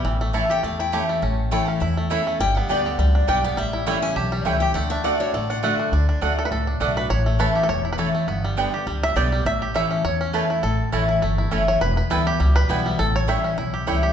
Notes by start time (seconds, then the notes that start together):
Already playing: E4
0.05 A1 A2 E3
0.21 A3
0.33 E3 A3 C#4 E4 C#5 A5
0.49 C#4 E4 G4 G5
0.63 E2 A3 F5
0.79 E4 G5
0.92 E3 A3 C#4 E4 G4 C#5 A5
1.09 A3
1.22 A1 A2 C#4
1.51 E3 A3 C#4 E4 C#5 G5 A5
1.68 C#4 F5
1.80 E2 E4 E5
1.97 A3
2.10 E3 A3 C#4 E4 C#5 E5 A5
2.27 A3 C#4 E4
2.40 G1 G2 G3 G5
2.57 B3 F5
2.69 D2 D3 G3 B3 D4 G4 D5 G5
2.85 D3 B3 G4
2.98 C#2 F#2 G3 D5
3.15 D4
3.27 B1 G2 G3 B3 G4 D5 G5
3.44 B3 F5
3.57 A1 A2 G3 E5
3.73 E4
3.86 E3 G3 A3 C#4 E4 C#5 E5 G5
4.02 C#4 E4 G#5
4.16 B1 E2 G4 A5
4.32 G3 C#5
4.45 C#2 E3 G3 A3 C#4 E4 C#5 E5 G5
4.60 C#4 E4 G4 G5
4.74 D2 D3 A3 F#5
4.90 D4 E5
5.04 D3 A3 D4 F#4 D5 F#5
5.20 D3 D4 F#4 C#5
5.34 A1 A2 A3 D5
5.50 D4 F#5
5.63 D3 A3 D4 F#4 D5 F#5
5.79 D4
5.92 D2 D3 D4
6.09 D4
6.21 D2 D3 A3 D4 F#4 D5 F#5
6.39 A4
6.45 B4
6.51 C#2 A2 A4
6.67 D4
6.80 B1 D3 A3 D4 F#4 D5 F#5
6.97 D4 F#4 B4
7.10 A1 A2 C#5
7.26 A3
7.39 E3 A3 C#4 E4 B4 C#5 A5
7.55 G4
7.63 A4
7.69 E1 E2 C#5
7.85 E4
7.92 B4
7.98 E3 A3 C#4 E4 A4 C#5 A5
8.15 A3 C#4 E4
8.28 G1 G2 B3
8.44 G3
8.57 D3 G3 B3 D4 G4 D5 G5
8.73 B3 G4
8.87 C#2 D3 G3
9.03 E5
9.16 B1 D3 G3 B3 G4 D5 G5
9.32 G3 B3 G4
9.45 A1 A2 E5
9.62 G4
9.74 E3 A3 C#4 E4 C#5 E5 A5
9.91 C#4
10.04 E2 C#5
10.21 C#4
10.33 E3 A3 C#4 E4 B4 C#5 A5
10.50 C#4 E4
10.63 A1 A2 A4
10.92 A1 E3 A3 C#4 E4 C#5 A5
11.09 E4
11.22 G1 E2 A3
11.38 E4
11.51 F#1 E3 A3 C#4 E4 C#5 A5
11.68 C#5
11.81 E1 E2 B4
11.97 B4
12.10 D2 E3 G3 B3 E4 A4 B4 G5
12.26 B3 E4 G4
12.40 C#2 B2 G3
12.56 B4
12.69 B1 E3 G3 B3 E4 B4 G5
12.86 G3
12.99 A1 A2 A4
13.16 C#5
13.27 E3 G3 A3 C#4 E4 C#5 E5 G5
13.44 C#4
13.58 B1 E2 E4
13.74 G4
13.87 C#2 E3 G3 A3 C#4 E4 C#5 G5
14.03 G4